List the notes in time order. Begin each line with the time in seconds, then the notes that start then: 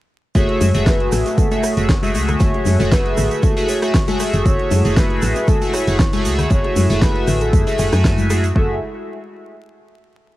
0.35 F#1 A3 F#4 G#4 C#5 E5, kick, closed hi-hat, shaker
0.49 closed hi-hat
0.61 F#2, snare, closed hi-hat, open hi-hat, high bongo, high conga, shaker
0.74 F#1 A3 F#4 G#4 E5, closed hi-hat, shaker
0.86 B4, kick, snare, closed hi-hat, high bongo, shaker
1.00 closed hi-hat
1.12 A1, cross-stick, snare, closed hi-hat, open hi-hat, shaker
1.26 snare, closed hi-hat, high bongo, shaker
1.38 A4, kick, closed hi-hat, high conga, shaker
1.51 A3 F#4 G#4 E5, closed hi-hat, high bongo, shaker
1.63 C#5, cross-stick, closed hi-hat, open hi-hat, shaker
1.77 F#1 A3 F#4 G#4 E5, closed hi-hat, shaker
1.89 kick, snare, closed hi-hat, high bongo, shaker
2.03 A3 F#4 G#4 E5, snare, closed hi-hat, high conga, shaker
2.14 C#2 A3 F#4 G#4 E5, snare, closed hi-hat, open hi-hat, high bongo, shaker
2.28 cross-stick, closed hi-hat, low conga, shaker
2.40 F#1 C#5, kick, snare, closed hi-hat, shaker
2.54 closed hi-hat, high bongo
2.65 F#2, snare, closed hi-hat, open hi-hat, high conga, shaker
2.79 F#1 A3 F#4 G#4 E5, snare, high bongo, shaker
2.91 B4, kick, snare, closed hi-hat, shaker
3.05 closed hi-hat
3.17 A1, cross-stick, closed hi-hat, open hi-hat, high bongo, low conga, shaker
3.31 closed hi-hat, shaker
3.43 A4, kick, closed hi-hat, high bongo, high conga, shaker
3.56 A3 F#4 G#4 E5, snare, closed hi-hat, shaker
3.69 C#5, snare, closed hi-hat, open hi-hat, shaker
3.82 A3 F#4 G#4 E5, cross-stick, closed hi-hat, high bongo, shaker
3.94 kick, snare, closed hi-hat, open hi-hat, shaker
4.08 A3 F#4 G#4 E5, closed hi-hat, high bongo, high conga, shaker
4.20 A3 F#4 G#4 E5, cross-stick, closed hi-hat, open hi-hat, shaker
4.33 F#1, snare, closed hi-hat, shaker
4.45 F#1 E4 F#4 C#5, kick, closed hi-hat, high bongo, shaker
4.59 closed hi-hat
4.71 F#2, snare, closed hi-hat, open hi-hat, high bongo, high conga, shaker
4.85 F#1 A3 F#4 G#4 E5, closed hi-hat, shaker
4.97 B4, kick, snare, closed hi-hat, shaker
5.10 closed hi-hat, high bongo
5.22 A1, cross-stick, snare, closed hi-hat, open hi-hat, shaker
5.36 snare, closed hi-hat, high bongo, shaker
5.48 A4, kick, closed hi-hat, high conga, shaker
5.62 A3 F#4 G#4 E5, closed hi-hat, shaker
5.73 C#5, cross-stick, closed hi-hat, open hi-hat, high bongo, shaker
5.87 F#1 A3 F#4 G#4 E5, closed hi-hat, shaker
5.99 kick, snare, closed hi-hat, high bongo, shaker
6.13 A3 F#4 G#4 E5, snare, closed hi-hat, high conga, shaker
6.25 C#2 A3 F#4 G#4 E5, snare, closed hi-hat, open hi-hat, shaker
6.38 cross-stick, snare, closed hi-hat, high bongo, low conga, shaker
6.50 F#1 C#5, kick, closed hi-hat, shaker
6.64 closed hi-hat, high bongo
6.76 F#2, closed hi-hat, open hi-hat, high conga, shaker
6.90 F#1 A3 F#4 G#4 E5, closed hi-hat, shaker
7.01 B4, kick, snare, closed hi-hat, high bongo, shaker
7.16 closed hi-hat
7.27 A1, cross-stick, closed hi-hat, open hi-hat, high bongo, low conga, shaker
7.41 A4, closed hi-hat, shaker
7.53 F#2, kick, closed hi-hat, high conga, shaker
7.67 A3 F#4 G#4 E5, snare, closed hi-hat, high bongo, shaker
7.78 F#1 A3 F#4 G#4 E5, snare, closed hi-hat, open hi-hat, shaker
7.92 F#2 A3 F#4 E5 G#5, cross-stick, closed hi-hat, high bongo, shaker
8.04 kick, snare, closed hi-hat, open hi-hat, shaker
8.18 closed hi-hat, high conga, shaker
8.30 A3 F#4 G#4 E5, cross-stick, closed hi-hat, open hi-hat, high bongo, shaker
8.44 snare, closed hi-hat, shaker
8.55 F#1 G#3 A3 E4 F#4 G#4 A4 E5, kick